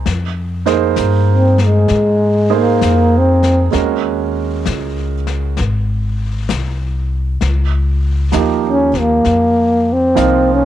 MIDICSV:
0, 0, Header, 1, 5, 480
1, 0, Start_track
1, 0, Key_signature, -4, "minor"
1, 0, Tempo, 920245
1, 31, Time_signature, 4, 2, 24, 8
1, 5555, End_track
2, 0, Start_track
2, 0, Title_t, "Grand piano"
2, 0, Program_c, 0, 0
2, 0, Control_c, 0, 64, 127
2, 37, Control_c, 0, 64, 0
2, 121, Control_c, 0, 64, 127
2, 342, Note_on_c, 0, 58, 51
2, 343, Note_on_c, 0, 63, 43
2, 347, Note_on_c, 0, 72, 49
2, 349, Note_on_c, 0, 68, 43
2, 489, Note_off_c, 0, 58, 0
2, 490, Note_off_c, 0, 63, 0
2, 492, Note_off_c, 0, 72, 0
2, 493, Note_off_c, 0, 68, 0
2, 1302, Note_on_c, 0, 58, 48
2, 1303, Note_on_c, 0, 63, 41
2, 1304, Note_on_c, 0, 68, 49
2, 1307, Note_on_c, 0, 72, 49
2, 1913, Note_off_c, 0, 58, 0
2, 1913, Note_off_c, 0, 63, 0
2, 1914, Note_off_c, 0, 68, 0
2, 1915, Note_off_c, 0, 72, 0
2, 1935, Note_on_c, 0, 56, 39
2, 1940, Note_on_c, 0, 61, 42
2, 1944, Note_on_c, 0, 66, 36
2, 1945, Note_on_c, 0, 70, 45
2, 1955, Control_c, 0, 64, 0
2, 2055, Control_c, 0, 64, 127
2, 2678, Note_off_c, 0, 56, 0
2, 2681, Note_off_c, 0, 61, 0
2, 2683, Note_off_c, 0, 66, 0
2, 2683, Note_off_c, 0, 70, 0
2, 2914, Control_c, 0, 64, 0
2, 3976, Control_c, 0, 64, 127
2, 4339, Note_on_c, 0, 53, 40
2, 4343, Note_on_c, 0, 58, 39
2, 4346, Note_on_c, 0, 63, 37
2, 4351, Note_on_c, 0, 67, 45
2, 4632, Note_off_c, 0, 53, 0
2, 4634, Note_off_c, 0, 58, 0
2, 4635, Note_off_c, 0, 63, 0
2, 4638, Note_off_c, 0, 67, 0
2, 5295, Note_on_c, 0, 53, 48
2, 5296, Note_on_c, 0, 58, 44
2, 5299, Note_on_c, 0, 63, 42
2, 5300, Note_on_c, 0, 65, 51
2, 5555, Note_off_c, 0, 53, 0
2, 5555, Note_off_c, 0, 58, 0
2, 5555, Note_off_c, 0, 63, 0
2, 5555, Note_off_c, 0, 65, 0
2, 5555, End_track
3, 0, Start_track
3, 0, Title_t, "Trombone"
3, 0, Program_c, 1, 57
3, 704, Note_on_c, 1, 60, 59
3, 861, Note_on_c, 1, 56, 58
3, 869, Note_off_c, 1, 60, 0
3, 1348, Note_on_c, 1, 58, 68
3, 1355, Note_off_c, 1, 56, 0
3, 1659, Note_on_c, 1, 60, 66
3, 1667, Note_off_c, 1, 58, 0
3, 1911, Note_off_c, 1, 60, 0
3, 4535, Note_on_c, 1, 61, 73
3, 4690, Note_on_c, 1, 58, 72
3, 4698, Note_off_c, 1, 61, 0
3, 5178, Note_on_c, 1, 60, 63
3, 5186, Note_off_c, 1, 58, 0
3, 5495, Note_on_c, 1, 61, 73
3, 5503, Note_off_c, 1, 60, 0
3, 5555, Note_off_c, 1, 61, 0
3, 5555, End_track
4, 0, Start_track
4, 0, Title_t, "Upright bass"
4, 0, Program_c, 2, 32
4, 35, Note_on_c, 2, 41, 63
4, 498, Note_off_c, 2, 41, 0
4, 510, Note_on_c, 2, 43, 66
4, 975, Note_off_c, 2, 43, 0
4, 992, Note_on_c, 2, 44, 65
4, 1456, Note_off_c, 2, 44, 0
4, 1471, Note_on_c, 2, 41, 70
4, 1935, Note_off_c, 2, 41, 0
4, 1950, Note_on_c, 2, 39, 63
4, 2414, Note_off_c, 2, 39, 0
4, 2435, Note_on_c, 2, 37, 71
4, 2897, Note_off_c, 2, 37, 0
4, 2916, Note_on_c, 2, 32, 79
4, 3377, Note_off_c, 2, 32, 0
4, 3396, Note_on_c, 2, 36, 66
4, 3857, Note_off_c, 2, 36, 0
4, 3870, Note_on_c, 2, 37, 75
4, 4334, Note_off_c, 2, 37, 0
4, 4351, Note_on_c, 2, 39, 82
4, 4814, Note_off_c, 2, 39, 0
4, 4829, Note_on_c, 2, 41, 69
4, 5293, Note_off_c, 2, 41, 0
4, 5305, Note_on_c, 2, 36, 69
4, 5555, Note_off_c, 2, 36, 0
4, 5555, End_track
5, 0, Start_track
5, 0, Title_t, "Drums"
5, 30, Note_on_c, 9, 25, 43
5, 30, Note_on_c, 9, 38, 42
5, 82, Note_off_c, 9, 38, 0
5, 346, Note_on_c, 9, 38, 34
5, 398, Note_off_c, 9, 38, 0
5, 502, Note_on_c, 9, 38, 39
5, 502, Note_on_c, 9, 44, 39
5, 554, Note_off_c, 9, 38, 0
5, 554, Note_off_c, 9, 44, 0
5, 825, Note_on_c, 9, 38, 27
5, 877, Note_off_c, 9, 38, 0
5, 982, Note_off_c, 9, 25, 0
5, 982, Note_on_c, 9, 25, 45
5, 982, Note_on_c, 9, 38, 35
5, 1034, Note_off_c, 9, 38, 0
5, 1467, Note_on_c, 9, 38, 43
5, 1467, Note_on_c, 9, 44, 49
5, 1519, Note_off_c, 9, 38, 0
5, 1519, Note_off_c, 9, 44, 0
5, 1788, Note_on_c, 9, 38, 33
5, 1840, Note_off_c, 9, 38, 0
5, 1944, Note_off_c, 9, 25, 0
5, 1944, Note_on_c, 9, 25, 39
5, 1944, Note_on_c, 9, 38, 43
5, 1997, Note_off_c, 9, 38, 0
5, 2428, Note_on_c, 9, 38, 42
5, 2428, Note_on_c, 9, 44, 38
5, 2480, Note_off_c, 9, 38, 0
5, 2480, Note_off_c, 9, 44, 0
5, 2748, Note_on_c, 9, 38, 31
5, 2800, Note_off_c, 9, 38, 0
5, 2904, Note_off_c, 9, 25, 0
5, 2904, Note_on_c, 9, 25, 41
5, 2904, Note_on_c, 9, 38, 36
5, 2956, Note_off_c, 9, 38, 0
5, 3385, Note_on_c, 9, 38, 54
5, 3385, Note_on_c, 9, 44, 46
5, 3437, Note_off_c, 9, 38, 0
5, 3437, Note_off_c, 9, 44, 0
5, 3864, Note_off_c, 9, 25, 0
5, 3864, Note_on_c, 9, 25, 39
5, 3864, Note_on_c, 9, 38, 36
5, 3916, Note_off_c, 9, 38, 0
5, 4341, Note_on_c, 9, 38, 47
5, 4341, Note_on_c, 9, 44, 39
5, 4393, Note_off_c, 9, 38, 0
5, 4393, Note_off_c, 9, 44, 0
5, 4663, Note_on_c, 9, 36, 41
5, 4663, Note_on_c, 9, 38, 31
5, 4715, Note_off_c, 9, 36, 0
5, 4715, Note_off_c, 9, 38, 0
5, 4823, Note_off_c, 9, 25, 0
5, 4823, Note_on_c, 9, 25, 34
5, 4823, Note_on_c, 9, 38, 35
5, 4875, Note_off_c, 9, 38, 0
5, 5302, Note_on_c, 9, 38, 44
5, 5302, Note_on_c, 9, 44, 53
5, 5354, Note_off_c, 9, 38, 0
5, 5354, Note_off_c, 9, 44, 0
5, 5555, Note_off_c, 9, 25, 0
5, 5555, End_track
0, 0, End_of_file